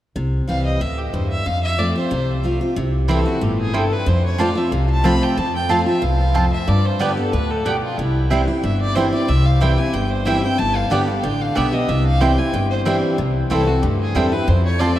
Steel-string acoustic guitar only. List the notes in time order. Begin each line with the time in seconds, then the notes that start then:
0.16 C3
0.48 E3 G3 C4 E4
0.81 A2
1.14 G2
1.46 F2
1.78 F3 A3 C4 F4
1.96 C4 F4
2.11 C3
2.43 F3 A3 C4 F4
2.61 C4 F4
2.76 C3
3.08 E3 G3 C4 E4
3.25 C4 E4
3.41 A2
3.74 G2
4.06 F2
4.38 F3 A3 C4 F4
4.55 C4 F4
4.72 C3
5.04 F3 A3 C4 F4
5.37 F2
5.69 F3 A3 C4 F4
5.86 C4 F4
6.02 E2
6.35 F2
6.68 G2
6.99 D3 G3 B3 G4
7.17 B3 G4
7.33 A2
7.66 B2
7.99 C3
8.31 E3 G3 C4 E4
8.48 C4 E4
8.63 G2
8.96 E3 G3 C4 E4
9.12 C4 E4
9.28 C3
9.60 E3 G3 C4 E4
9.78 C4 E4
9.93 G2
10.25 E3 G3 C4 E4
10.43 C4 E4
10.58 G2
10.90 D3 G3 B3 G4
11.07 B3 G4
11.23 D3
11.56 D3 G3 B3 G4
11.73 B3 G4
11.89 C3
12.20 E3 G3 C4 E4
12.38 C4 E4
12.54 G2
12.86 E3 G3 C4 E4
13.18 C3
13.50 E3 G3 C4 E4
13.67 C4 E4
13.83 G2
14.15 E3 G3 C4 E4
14.32 C4 E4
14.48 F2
14.79 F3 A3 C4 F4